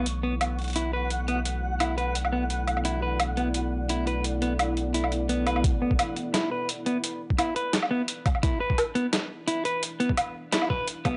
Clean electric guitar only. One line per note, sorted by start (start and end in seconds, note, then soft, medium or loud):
0.23 0.34 B3 medium
0.76 0.92 E4 medium
0.93 1.10 B4 medium
1.28 1.39 B3 medium
1.81 1.97 E4 medium
1.98 2.14 B4 medium
2.33 2.43 B3 medium
2.85 3.02 E4 medium
3.02 3.19 B4 medium
3.37 3.48 B3 medium
3.90 4.07 E4 medium
4.07 4.24 B4 medium
4.42 4.53 B3 medium
4.94 5.11 E4 medium
5.29 5.45 B3 medium
5.47 5.63 B4 medium
5.82 5.92 B3 medium
6.34 6.51 E4 medium
6.51 6.68 B4 medium
6.86 6.97 B3 medium
7.38 7.55 E4 medium
7.56 7.73 B4 medium
7.91 8.01 B3 medium
8.43 8.60 E4 medium
8.60 8.77 B4 medium
8.95 9.06 B3 medium
9.48 9.64 E4 medium
9.65 9.82 B4 medium
10.00 10.11 B3 medium
10.53 10.69 E4 medium
10.70 10.87 B4 medium
11.05 11.15 B3 medium